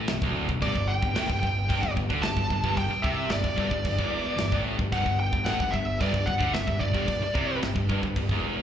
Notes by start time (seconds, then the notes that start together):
0.08 B0 B1, snare, crash
0.22 D1 D2, kick
0.49 B0 B1, kick
0.62 G1 G2 D5, kick, crash
0.75 G1 G2, kick
0.88 G5
1.02 G1 G2, kick
1.14 A1 A2, snare, crash
1.28 G1 G2, kick
1.40 G1 G2 G5, kick
1.69 G1 G2, kick, crash
1.83 G1 G2, kick
1.96 G1 G2, kick
2.09 D2 D3, kick
2.22 G1 G2 A5, snare, crash
2.37 G1 G2, kick
2.50 G1 G2, kick
2.63 G1 G2, kick
2.77 G1 G2 G5, kick, crash
2.89 muted picked electric bass stroke, muted distorted electric guitar stroke
3.02 C2 C3 E5, kick
3.28 G1 G2 D5, snare, crash
3.43 G1 G2, kick
3.56 G1 G2, kick
3.71 G1 G2, kick
3.85 G1 G2, kick, crash
3.98 E1 E2, kick
4.37 G1 G2, snare, crash
4.52 A1 A2, kick
4.78 G1 G2, kick
4.92 G1 G2 F#5, kick, crash
5.05 G1 G2, kick
5.20 G5
5.32 G1 G2, kick
5.43 A1 A2 F#5, snare, crash
5.59 G1 G2, kick
5.72 G1 G2 E5, kick
6.00 G1 G2 D5, kick, crash
6.14 G1 G2, kick
6.26 G1 G2 F#5, kick
6.39 D2 D3, kick
6.53 G1 G2 E5, snare, crash
6.67 G1 G2, kick
6.80 G1 G2 D5, kick
6.94 G1 G2, kick
7.07 G1 G2, kick, crash
7.20 muted picked electric bass stroke, muted distorted electric guitar stroke
7.34 C2 C3, kick
7.60 G1 G2, snare, crash
7.75 G1 G2, kick
7.89 G1 G2, kick
8.02 G1 G2, kick
8.16 G1 G2, kick, crash
8.29 E1 E2, kick